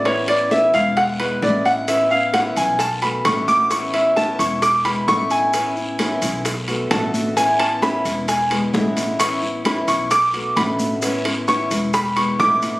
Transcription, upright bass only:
X:1
M:4/4
L:1/8
Q:1/4=131
K:A
V:1 name="Upright bass" clef=bass
A,,,3 E,,,3 A,,,2- | A,,,3 B,,,3 A,,,2- | A,,,3 E,,,3 A,,,2- | A,,,3 B,,,3 A,,,2- |
A,,,3 E,,,3 A,,,2- | A,,,3 B,,,3 A,,,2- | A,,,3 E,,,3 A,,,2 |]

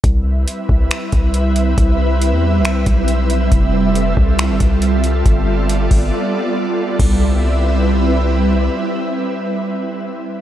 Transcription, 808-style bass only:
X:1
M:4/4
L:1/16
Q:1/4=138
K:C
V:1 name="808-style bass" clef=bass
C,,4 z2 C,,2 z2 C,,6 | C,,4- C,, E,,2- E,,/2 C,,2- C,,/2 B,,,6 | F,,,6 C,,3 G,,, C,,6 | G,,,6 G,,,2 z8 |
C,,16 | z16 |]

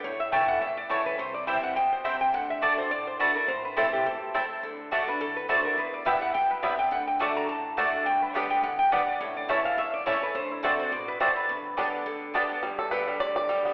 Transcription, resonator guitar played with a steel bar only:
X:1
M:4/4
L:1/8
Q:"Swing" 1/4=210
K:G
V:1 name="Resonator guitar played with a steel bar"
^c e g f e d c B | c d e f g c e g | f e d c d c B _B | c B A G A4- |
A2 z B A B c _B | B d e f g B e g | f g a _b a2 z2 | g B d g f g f d |
^c d e =f e d c B | c E A c d B c B- | B4 z4 | z8 |]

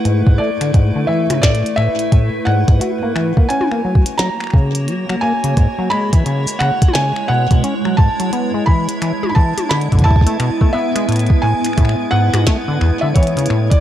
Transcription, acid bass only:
X:1
M:4/4
L:1/16
Q:"Swing 16ths" 1/4=87
K:A
V:1 name="Acid bass" clef=bass
G,, G,, A, D, G,, D, E, C, A,, z A,, z A,, z G,, G,, | F ^A, E, A, C A, F, z F, z C,2 F, F, A, C, | G,, F, G, E, C, z C, z C, z B,, B,, C F, G,, F, | B, G, E, z E, z E, z D, D, E A, B,, A, B, G, |
A,, z A,, z A,, z G,, G,, A, D, E,, D, E, C, A,, z |]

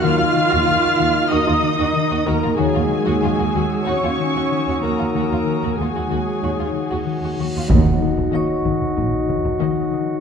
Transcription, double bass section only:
X:1
M:4/4
L:1/16
Q:1/4=94
K:Ebm
V:1 name="Double bass section" clef=bass
E,, E,, z E,, E,, E,, E,, z E,, E,, z E,, z E,, E,, E,, | E,, E,, z E,, E,, E,, E,, z E,, E,, z E,, z E,, E,, E,, | E,, E,, z E,, E,, E,, E,, z E,, E,, z E,, z E,, E,, E,, | E,,3 z4 z B,,,3 z4 z |]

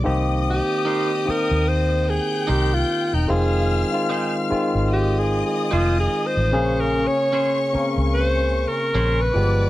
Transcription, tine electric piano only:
X:1
M:4/4
L:1/16
Q:"Swing 16ths" 1/4=74
K:Bbdor
V:1 name="Tine electric piano"
[E,B,CG]4- [E,B,CG] z [E,B,Cg]6- [E,B,Cg] z3 | [E,A,CF]3 [E,A,CF]3 [E,A,CF]6- [E,A,CF] z3 | [D,B,DA]4- [D,B,DA] z [D,B,CB]6- [D,B,CB] z [F,A,=B,G]2 |]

